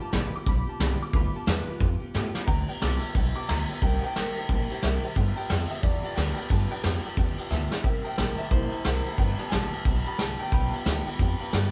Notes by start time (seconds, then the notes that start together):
Already playing: A3 B3 F4
0.00 F3 B3 F4 G4 A5, muted upright bass stroke
0.10 A1 G2 D3 F3 B3 F4 A#5, snare, open hi-hat
0.15 G4 B5
0.33 B3 F4 G4 D6, muted upright bass stroke
0.37 F3
0.46 B1 F3 B3 F4 G4 B5, kick, open hi-hat
0.66 F3 B3 F4 G4 A5, muted upright bass stroke
0.80 C2 G2 D3 F3 B3 F4 G4 B5, snare, open hi-hat
0.99 F3 B3 F4 G4 D6, muted upright bass stroke
1.13 D2 G2 D3 F3 A3 B3 F4 G4 B5, kick, open hi-hat
1.33 F3 B3 F4 G4 A5, muted upright bass stroke
1.46 E2 G2 D3 F3 B3 F4 G4 B4, snare
1.66 F3 A3 B3 F4 G4, muted upright bass stroke
1.80 F2 F3 B3 F4 G4, kick, open hi-hat
2.00 F3 B3 F4 G4, muted upright bass stroke
2.14 G2 A2 D3 F3 B3 F4 G4, snare
2.34 F3 B3 F4 G4, muted upright bass stroke, snare
2.46 D2 G2 D3 F3 B3 F4 G4 B4 D5 G5 A#5, kick, ride
2.67 F3 B3 F4 G4 B4 D5 G5, ride
2.80 C2 G2 D3 F3 B3 F4 G4 B4 D5 G5 D6, snare, ride
3.01 F3 B3 F4 G4 B4 D5 E5, muted upright bass stroke, ride
3.13 B1 F3 B3 F4 G4 B4 D5 G5, kick, ride
3.34 F3 B3 F4 G4 B4 D5 G5 D6, muted upright bass stroke, ride
3.47 D2 G2 D3 F3 B3 F4 G4 B4 D5 E5 A#5, snare, ride
3.68 F3 B3 F4 G4 B4 D5 G5, muted upright bass stroke, ride
3.81 C2 C3 G3 A#3 E4 G4 C5 E5 G5, kick, ride
3.99 E4 G4 F#5, ride
4.03 C5 E5 G5, muted upright bass stroke
4.16 A1 C3 G3 A#3 E4 G4 C5 E5 A#5, snare, ride
4.36 A#3 E4 G4 C5 E5 G5, muted upright bass stroke, ride
4.49 A#1 G3 A#3 E4 G4 C5 E5 A5, kick, ride
4.70 A#3 E4 G4 C5 E5 G5, muted upright bass stroke, ride
4.83 C2 C3 G3 A#3 E4 G4 C5 E5 G5, snare, ride
5.03 A#3 E4 G4 C5 E5 G5, ride
5.16 G2 D3 F3 B3 F4 G4 B4 D5 G5, kick, ride
5.36 F3 B3 F4 G4 B4 D5 G5, muted upright bass stroke, ride
5.48 F2 G2 D3 F3 B3 F4 G4 B4 D5 G5, snare, ride
5.69 F3 B3 F4 G4 B4 D5 E5 G5, ride
5.82 E2 F3 B3 F4 G4 B4 D5 E5, kick, ride
6.02 F3 B3 F4 G4 B4 D5 G5, muted upright bass stroke, ride
6.15 D2 G2 D3 F3 B3 F4 G4 B4 D5 G5, snare, ride
6.36 F3 B3 F4 G4 B4 D5 G5, ride
6.50 G2 D3 F3 B3 F4 G4 B4 D5 A5, kick, ride
6.70 F3 B3 F4 G4 B4 D5 G5, muted upright bass stroke, ride
6.83 F2 G2 D3 F3 B3 F4 G4 B4 D5 G5, snare, ride
7.04 F3 B3 F4 G4 B4 D5 G5, muted upright bass stroke, ride
7.17 E2 F3 B3 F4 G4 B4 D5 G5, kick, ride
7.38 F3 B3 F4 G4 B4 D5 G5, muted upright bass stroke, ride
7.51 D2 G2 D3 F3 B3 F4 G4 B4 D5 E5 A5, snare
7.71 B3 F4 G4 B4 D5 G5, muted upright bass stroke, snare
7.84 C2 C3 G3 A#3 E4 G4 C5 E5 G5, kick, ride
8.04 A#3 E4 G4 C5 E5 G5, ride
8.18 A1 C3 G3 A#3 E4 G4 C5 E5 A#5, snare, ride
8.38 A#3 E4 G4 C5 E5 G5, muted upright bass stroke, ride
8.51 A#1 G3 A#3 E4 G4 C5 E5 A#5, kick, ride
8.71 A#3 E4 G4 C5 E5 A5, ride
8.85 C2 C3 G3 A#3 E4 G4 C5 E5 G5, snare, ride
9.05 E4 G4 C5 E5 A5, muted upright bass stroke, ride
9.09 A#3
9.18 G1 G2 D3 F3 B3 F4 G4 B4 D5 G5, kick, ride
9.39 F3 B3 F4 G4 B4 D5 A5, muted upright bass stroke, ride
9.48 B4 G#5, snare, ride
9.53 A1 G2 D3 F3 B3 F4 G4 D5 E5 A5
9.72 F3 B3 F4 G4 B4 D5 G5, muted upright bass stroke, ride
9.85 B1 F3 B3 F4 B4 D5 G5, kick, ride
9.90 G4
10.06 B3 F4 G4 B4 D5 G5 B5, muted upright bass stroke, ride
10.10 F3
10.18 C2 G2 D3 F3 B3 F4 G4 B4 D5 G5 A5, snare, ride
10.38 F3 B3 F4 G4 B4 D5 G5, ride
10.52 B1 G2 D3 F3 B3 F4 G4 B4 D5 G5 B5, kick, ride
10.71 F3 B3 F4 G4 B4 D5 F5, muted upright bass stroke, ride
10.85 D2 G2 D3 F3 B3 F4 G4 B4 D5 E5, snare, ride
11.05 F3 B3 F4 G4 B4 D5 G5, muted upright bass stroke, ride
11.18 F2 F3 B3 F4 G4 B4 D5 G5, kick, ride
11.38 F3 B3 F4 G4 B4 D5 F5, muted upright bass stroke, ride
11.53 G2 D3 F3 B3 F4 G4 B4 D5 G5, snare, ride